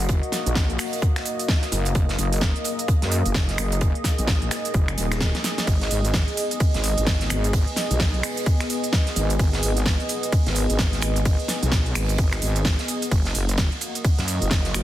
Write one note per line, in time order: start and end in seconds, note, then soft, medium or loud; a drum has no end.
0.00 0.21 F#1 loud
0.00 5.63 A#3 medium
0.00 1.92 F#4 medium
0.00 13.08 D#5 medium
0.00 shaker soft
0.09 kick loud
0.09 closed hi-hat medium
0.09 shaker soft
0.23 closed hi-hat soft
0.32 snare medium
0.32 closed hi-hat medium
0.32 open hi-hat loud
0.32 shaker medium
0.46 0.77 A#1 loud
0.46 closed hi-hat medium
0.46 shaker soft
0.55 kick loud
0.55 snare loud
0.55 closed hi-hat medium
0.55 shaker soft
0.70 closed hi-hat soft
0.78 finger snap medium
0.78 open hi-hat medium
0.78 open hi-hat loud
0.78 shaker medium
0.93 closed hi-hat medium
0.93 shaker soft
1.02 kick loud
1.02 closed hi-hat medium
1.02 shaker soft
1.16 finger snap medium
1.16 snare soft
1.16 closed hi-hat medium
1.26 closed hi-hat medium
1.26 open hi-hat loud
1.26 shaker medium
1.39 closed hi-hat medium
1.39 shaker soft
1.48 kick loud
1.48 snare loud
1.48 closed hi-hat medium
1.48 shaker soft
1.62 snare soft
1.62 closed hi-hat soft
1.72 1.94 F#1 loud
1.72 closed hi-hat medium
1.72 open hi-hat loud
1.72 shaker medium
1.85 closed hi-hat soft
1.85 closed hi-hat medium
1.85 shaker soft
1.95 2.17 F#1 loud
1.95 13.08 G#4 medium
1.95 kick loud
1.95 closed hi-hat medium
1.95 shaker soft
2.09 snare medium
2.09 closed hi-hat soft
2.19 2.53 F#1 loud
2.19 closed hi-hat medium
2.19 open hi-hat loud
2.19 shaker medium
2.33 closed hi-hat medium
2.33 shaker soft
2.41 kick loud
2.41 snare loud
2.41 closed hi-hat medium
2.41 shaker soft
2.56 closed hi-hat soft
2.64 closed hi-hat medium
2.64 open hi-hat loud
2.64 shaker medium
2.79 closed hi-hat medium
2.79 shaker soft
2.88 kick loud
2.88 closed hi-hat medium
2.88 shaker soft
3.02 3.23 F#2 loud
3.02 snare medium
3.02 closed hi-hat medium
3.11 closed hi-hat medium
3.11 open hi-hat loud
3.11 shaker medium
3.25 3.57 F#1 loud
3.25 closed hi-hat medium
3.25 shaker soft
3.34 kick loud
3.34 snare loud
3.34 closed hi-hat medium
3.34 shaker soft
3.49 snare soft
3.49 closed hi-hat medium
3.58 3.93 F#1 loud
3.58 finger snap medium
3.58 closed hi-hat medium
3.58 open hi-hat loud
3.58 shaker medium
3.72 closed hi-hat medium
3.72 shaker soft
3.81 kick loud
3.81 closed hi-hat loud
3.81 shaker soft
3.95 closed hi-hat soft
4.04 kick medium
4.04 snare medium
4.04 closed hi-hat medium
4.04 open hi-hat loud
4.04 shaker medium
4.18 4.50 A#1 loud
4.18 closed hi-hat medium
4.18 shaker soft
4.27 kick loud
4.27 snare loud
4.27 closed hi-hat medium
4.27 shaker soft
4.42 closed hi-hat soft
4.51 finger snap medium
4.51 snare loud
4.51 closed hi-hat medium
4.51 open hi-hat loud
4.51 shaker medium
4.65 closed hi-hat medium
4.65 shaker soft
4.74 4.96 F#1 loud
4.74 kick loud
4.74 closed hi-hat medium
4.74 shaker soft
4.88 finger snap medium
4.88 closed hi-hat medium
4.98 5.32 D#1 medium
4.98 closed hi-hat medium
4.98 open hi-hat loud
4.98 shaker medium
5.12 finger snap medium
5.12 snare soft
5.12 closed hi-hat medium
5.12 shaker soft
5.21 kick loud
5.21 snare loud
5.21 closed hi-hat medium
5.21 shaker soft
5.35 snare medium
5.35 snare soft
5.35 closed hi-hat medium
5.44 snare medium
5.44 closed hi-hat medium
5.44 open hi-hat loud
5.44 shaker medium
5.58 snare medium
5.58 closed hi-hat medium
5.58 closed hi-hat soft
5.58 shaker soft
5.67 5.89 G#1 loud
5.67 13.08 B3 medium
5.67 kick loud
5.67 closed hi-hat medium
5.67 ride medium
5.67 shaker soft
5.81 snare medium
5.81 closed hi-hat soft
5.90 6.25 G#1 loud
5.90 closed hi-hat medium
5.90 open hi-hat loud
5.90 shaker medium
6.05 closed hi-hat medium
6.05 shaker soft
6.14 kick loud
6.14 snare loud
6.14 closed hi-hat medium
6.14 ride medium
6.14 shaker soft
6.28 closed hi-hat soft
6.37 closed hi-hat medium
6.37 open hi-hat loud
6.37 shaker medium
6.51 closed hi-hat medium
6.51 shaker soft
6.60 kick loud
6.60 closed hi-hat medium
6.60 ride medium
6.60 shaker soft
6.74 6.95 G#1 loud
6.74 snare medium
6.74 closed hi-hat medium
6.83 closed hi-hat medium
6.83 open hi-hat loud
6.83 shaker medium
6.97 7.29 G#1 loud
6.97 closed hi-hat medium
6.97 shaker soft
7.07 kick loud
7.07 snare loud
7.07 closed hi-hat loud
7.07 ride medium
7.07 shaker soft
7.21 snare soft
7.21 closed hi-hat medium
7.30 7.65 G#1 loud
7.30 finger snap medium
7.30 closed hi-hat medium
7.30 open hi-hat loud
7.30 shaker medium
7.44 closed hi-hat medium
7.44 shaker soft
7.53 kick loud
7.53 closed hi-hat loud
7.53 ride medium
7.53 shaker soft
7.67 closed hi-hat soft
7.76 snare medium
7.76 closed hi-hat medium
7.76 open hi-hat loud
7.76 shaker medium
7.90 8.22 B1 loud
7.90 closed hi-hat medium
7.90 shaker soft
8.00 kick loud
8.00 snare loud
8.00 closed hi-hat medium
8.00 ride medium
8.00 shaker soft
8.14 closed hi-hat soft
8.23 finger snap medium
8.23 open hi-hat loud
8.23 open hi-hat medium
8.23 shaker medium
8.37 closed hi-hat medium
8.37 shaker soft
8.46 kick loud
8.46 closed hi-hat medium
8.46 ride medium
8.46 shaker soft
8.60 finger snap medium
8.60 snare soft
8.60 closed hi-hat medium
8.70 closed hi-hat medium
8.70 open hi-hat loud
8.70 shaker medium
8.84 closed hi-hat medium
8.84 shaker soft
8.93 kick loud
8.93 snare loud
8.93 closed hi-hat medium
8.93 ride medium
8.93 shaker soft
9.07 snare soft
9.07 closed hi-hat medium
9.16 9.38 G#1 loud
9.16 closed hi-hat medium
9.16 open hi-hat loud
9.16 shaker medium
9.30 closed hi-hat soft
9.30 closed hi-hat medium
9.30 shaker soft
9.39 9.61 G#1 loud
9.39 kick loud
9.39 closed hi-hat medium
9.39 ride medium
9.39 shaker soft
9.53 snare medium
9.53 closed hi-hat soft
9.63 9.98 G#1 loud
9.63 closed hi-hat medium
9.63 open hi-hat loud
9.63 shaker medium
9.77 closed hi-hat medium
9.77 shaker soft
9.86 kick loud
9.86 snare loud
9.86 closed hi-hat medium
9.86 ride medium
9.86 shaker soft
10.00 closed hi-hat soft
10.09 closed hi-hat medium
10.09 open hi-hat loud
10.09 shaker medium
10.23 closed hi-hat medium
10.23 shaker soft
10.32 kick loud
10.32 closed hi-hat medium
10.32 ride medium
10.32 shaker soft
10.46 10.67 G#1 loud
10.46 snare medium
10.46 closed hi-hat medium
10.55 closed hi-hat medium
10.55 open hi-hat loud
10.55 shaker medium
10.69 11.01 G#1 medium
10.69 closed hi-hat medium
10.69 shaker soft
10.79 kick loud
10.79 snare loud
10.79 closed hi-hat medium
10.79 ride medium
10.79 shaker soft
10.93 snare soft
10.93 closed hi-hat medium
11.02 11.37 G#1 loud
11.02 finger snap medium
11.02 closed hi-hat medium
11.02 open hi-hat loud
11.02 shaker medium
11.16 closed hi-hat medium
11.16 shaker soft
11.25 kick loud
11.25 closed hi-hat medium
11.25 ride medium
11.25 shaker soft
11.39 closed hi-hat soft
11.48 snare medium
11.48 closed hi-hat medium
11.48 open hi-hat loud
11.48 shaker medium
11.63 11.94 B1 loud
11.63 closed hi-hat medium
11.63 shaker soft
11.72 kick loud
11.72 snare loud
11.72 closed hi-hat medium
11.72 ride medium
11.72 shaker soft
11.86 closed hi-hat soft
11.95 12.40 G#1 loud
11.95 finger snap medium
11.95 open hi-hat medium
11.95 open hi-hat loud
11.95 shaker medium
12.09 closed hi-hat medium
12.09 shaker soft
12.18 kick loud
12.18 closed hi-hat medium
12.18 ride medium
12.18 shaker soft
12.32 finger snap medium
12.32 snare soft
12.32 closed hi-hat medium
12.42 12.77 G#1 medium
12.42 closed hi-hat medium
12.42 open hi-hat loud
12.42 shaker medium
12.56 closed hi-hat medium
12.56 shaker soft
12.65 kick loud
12.65 snare loud
12.65 closed hi-hat medium
12.65 ride medium
12.65 shaker soft
12.79 snare soft
12.79 closed hi-hat soft
12.88 closed hi-hat medium
12.88 open hi-hat loud
12.88 shaker medium
13.02 closed hi-hat soft
13.02 closed hi-hat medium
13.02 shaker soft
13.11 13.33 F#1 loud
13.11 14.83 A#3 medium
13.11 14.83 F#4 medium
13.11 14.83 D#5 medium
13.11 kick loud
13.11 closed hi-hat medium
13.11 ride medium
13.11 shaker soft
13.25 snare medium
13.25 closed hi-hat soft
13.35 13.70 F#1 loud
13.35 closed hi-hat medium
13.35 open hi-hat loud
13.35 shaker medium
13.49 closed hi-hat medium
13.49 shaker soft
13.58 kick loud
13.58 snare loud
13.58 closed hi-hat medium
13.58 ride medium
13.58 shaker soft
13.72 closed hi-hat soft
13.81 closed hi-hat medium
13.81 open hi-hat loud
13.81 shaker medium
13.95 closed hi-hat medium
13.95 shaker soft
14.05 kick loud
14.05 closed hi-hat medium
14.05 ride medium
14.05 shaker soft
14.18 14.39 F#2 loud
14.18 snare medium
14.18 closed hi-hat medium
14.28 closed hi-hat medium
14.28 open hi-hat loud
14.28 shaker medium
14.42 14.73 F#1 loud
14.42 closed hi-hat medium
14.42 shaker soft
14.51 kick loud
14.51 snare loud
14.51 closed hi-hat medium
14.51 ride medium
14.51 shaker soft
14.65 snare soft
14.65 closed hi-hat medium
14.74 14.83 F#1 loud
14.74 finger snap medium
14.74 closed hi-hat medium
14.74 open hi-hat loud
14.74 shaker medium